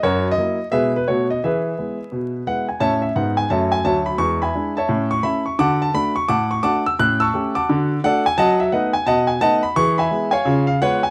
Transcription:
0.03 F#2 F#4 A#4 C#5
0.31 D#5
0.37 F#3 A#3 E4
0.71 B2 G#3 B3 E4 G#4 B4 E5
0.96 B4
1.08 B2 A3 B3 F#4 C#5
1.30 D#5
1.44 E3 G#4 B4 E5
1.78 G#3 B3 E4
2.12 B2
2.47 G#3 B3 E4 B4 F#5
2.69 G#5
2.80 A2 C#4 C#5 E5 A5
3.02 E5
3.15 G#2 B3 F#5
3.37 G#5
3.50 F#2 A3 C#5 E5 A5
3.72 G#5
3.84 D2 F#3 C#5 E5 A5
4.06 B5
4.18 E2 G#3 C#6
4.42 E5 G#5 B5
4.55 G#3 D4 E4
4.77 C#5 E5 A5
4.89 A2 C#4
5.11 C#6
5.23 A3 C#4 E4 E5 B5
5.46 C#6
5.59 D3 F#4 F#5 A5 D6
5.82 A5
5.94 A3 D4 F#4 B5
6.16 C#6
6.29 A2 F#5 A5 D6
6.51 C#6
6.63 A3 D4 F#4 F#5 A5 D6
6.86 E6
6.99 A2 C#4 F#6
7.20 A5 C#6 E6
7.34 A3 C#4 G4
7.55 F#5 A5 D6
7.69 D3 F#4
8.04 A3 D4 F#4 A4 D5 F#5
8.26 G#5
8.38 F#3 D#5 F#5 A5
8.60 E5
8.72 A3 B3 D#4 B4 D#5 F#5
8.93 G#5
9.06 B2 D#5 F#5 A5
9.27 G#5
9.41 A3 B3 D#4 D#5 F#5 A5
9.63 B5
9.76 E3 G#4 C#6
9.98 E5 G#5 B5
10.11 G#3 B3 E4
10.31 C#5 F5 G#5
10.45 C#3 F4
10.67 F5
10.81 G#3 B3 F4 B4 C#5 F#5
11.03 G#5

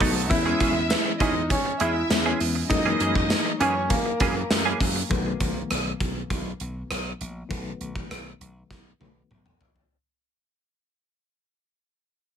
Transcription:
0.00 B1 F#3 A3 B3 D#4 A4, kick, open hi-hat
0.16 F#3 B3 D#4 A4
0.29 E2 E3 G#3 B3 C#4 E4 E5, kick, closed hi-hat
0.45 G#3 C#4 E4 G#4
0.60 E2 G#3 C#4 E4 G#4, kick, closed hi-hat
0.76 muted clean electric guitar stroke
0.90 muted clean electric guitar stroke, snare, closed hi-hat, tambourine
1.05 muted clean electric guitar stroke
1.19 E2 G#3 C#4 D#4 E4 G#4 D#5, kick, closed hi-hat
1.36 muted clean electric guitar stroke
1.49 C#4 C#5, muted clean electric guitar stroke, kick, closed hi-hat
1.66 muted clean electric guitar stroke
1.80 E2 G#3 C#4 E4 G#4 E5, closed hi-hat
1.95 muted clean electric guitar stroke
2.10 E2 E3 G#3 B3 C#4, muted clean electric guitar stroke, snare, closed hi-hat, tambourine
2.26 G#3 C#4 E4 G#4
2.40 E2, muted clean electric guitar stroke, open hi-hat
2.55 muted clean electric guitar stroke
2.69 F#2 E3 F#3 G#3 A#3 D#4 D#5, muted clean electric guitar stroke, kick, closed hi-hat
2.85 E3 A#3 C#4 G#4
3.00 F#2 E3 A#3 C#4 G#4, closed hi-hat
3.15 muted clean electric guitar stroke, kick
3.30 muted clean electric guitar stroke, snare, closed hi-hat, tambourine
3.46 muted clean electric guitar stroke
3.60 F#2 E3 A#3 C#4 G#4 C#5, closed hi-hat
3.76 muted clean electric guitar stroke
3.90 A#3 A#4, muted clean electric guitar stroke, kick, closed hi-hat
4.06 muted clean electric guitar stroke
4.20 F#2 E3 A#3 C#4 G#4, kick, closed hi-hat
4.36 muted clean electric guitar stroke
4.51 F#2, muted clean electric guitar stroke, snare, closed hi-hat, tambourine
4.65 E3 A#3 C#4 G#4
4.80 F#2, muted clean electric guitar stroke, kick, open hi-hat
4.96 muted clean electric guitar stroke
5.09 B1 D3 F#3 A3 B3, kick, closed hi-hat
5.16 D#3
5.40 B1, kick, closed hi-hat
5.70 B1, cross-stick, closed hi-hat
6.00 B1, kick, closed hi-hat
6.30 B1, kick, closed hi-hat
6.60 B1, closed hi-hat
6.91 B1, cross-stick, closed hi-hat
7.21 A#1, closed hi-hat
7.49 B1 D#3 F#3 A3 B3, kick, closed hi-hat
7.81 B1, closed hi-hat
7.96 kick
8.11 B1, cross-stick, closed hi-hat
8.41 B1, closed hi-hat
8.71 B1, kick, snare
9.00 B1 D#3 F#3 A3 B3, high tom
9.31 B1, mid tom
9.46 mid tom
9.61 A#1, floor tom
9.76 floor tom

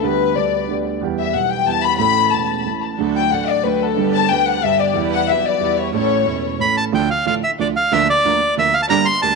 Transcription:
0.02 D2 D3 G3 B3 G4 B4
0.35 D2 D3 G3 B3 D5
0.40 G4
0.68 D2 D3 G3 B3
0.72 G4
1.01 E2 E3 G3 B3 G4
1.19 E5
1.33 B1 B2 E3 G3 B3 G4 F#5
1.51 G5
1.64 E2 E3 G3 B3 A5
1.69 G4
1.83 B5
1.97 A1 A2 E3 A3 C#4 A4 B5
2.31 E1 E2 E3 C#4 A5
2.64 A1 A2 E3 A3 C#4
2.68 A4
2.98 D2 D3 F#3 A3 D4 F#4 A4
3.17 G5
3.31 A1 A2 F#3 A3 D4 F#4 A4 F#5
3.49 D5
3.63 D2 D3 F#3 A3 D4 F#4 A4 B4
3.67 A4
3.82 A4
3.96 G1 G2 D3 G3 B3 D4 G4 B4
4.15 A5
4.30 D2 D3 G3 B3 D4 G4 B4 G5
4.48 F#5
4.61 G1 G2 D3 G3 B3 D4 G4 B4 E5
4.66 G4
4.80 D5
4.93 E2 E3 G3 B3 E4 G4 B4
5.13 F#5
5.27 B1 B2 E3 G3 B3 E4 G4 B4 E5
5.45 D5
5.60 E2 E3 G3 B3 E4 G4 B4
5.78 C#5
5.92 A1 A2 E3 A3 C#4 E4 A4 C#5
5.96 A4
6.24 E1 E2 E3 A3 C#4 E4 A4
6.57 A1 A2 E3 A3 C#4 E4 A4 B5
6.77 A5
6.92 D2 D3 F3 A3 D4 F4 A4 G5
7.10 F5
7.25 A1 A2 D3 F3 A3 D4 F4 A4 F5
7.44 E5
7.59 D2 D3 F3 A3 D4 F4 A4 D5
7.76 F5
7.92 D2 D3 F3 A#3 D4 F4 A#4 E5
8.10 D5
8.25 D2 D3 F3 A#3 D4 F4 A#4
8.57 D2 D3 F3 A#3 D4 F4 A#4 E5
8.74 F5
8.82 A5
8.89 G1 G2 D3 G3 A#3 D4 G4 A#4 A#5
9.05 C6
9.22 D2 D3 G3 A#3 D4 G4 A#4 A5

